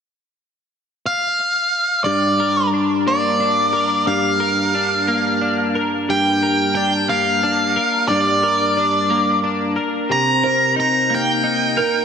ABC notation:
X:1
M:6/8
L:1/8
Q:3/8=60
K:Gm
V:1 name="Lead electric guitar"
z3 f3 | d2 z d3 | f4- f z | g2 g f3 |
d4 z2 | b2 b g3 |]
V:2 name="Felt piano"
z6 | z6 | z6 | z6 |
z6 | z c2 z2 B |]
V:3 name="Clean electric guitar"
z6 | G,, B D B, D B | G,, B D B, D B | G,, B D B, D B |
G,, B D B, D B | C, B E B, E B |]